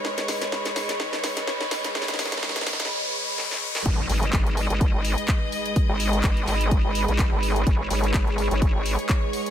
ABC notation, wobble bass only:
X:1
M:4/4
L:1/16
Q:"Swing 16ths" 1/4=126
K:G#m
V:1 name="Wobble bass" clef=bass
z16 | z16 | G,,,2 G,,,2 G,,,3 G,,,2 G,,,2 z4 z | z G,,,3 G,,,2 G,,,3 G,,,2 A,,,2 G,,,3 |
G,,,2 G,,,2 G,,,3 G,,,2 G,,,2 z4 z |]